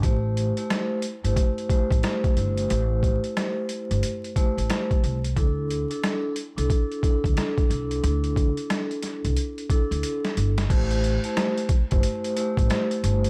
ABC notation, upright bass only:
X:1
M:4/4
L:1/16
Q:"Swing 16ths" 1/4=90
K:Am
V:1 name="Upright bass" clef=bass
A,,,3 z4 G,,, z3 A,,, z2 G,,,2 | A,,,3 z4 G,,, z3 A,,, z2 C,,2 | D,,3 z4 C,, z3 D,, z2 C,,2 | D,,3 z4 C,, z3 D,, z2 G,,,2 |
A,,,3 z4 G,,, z3 A,,, z2 G,,,2 |]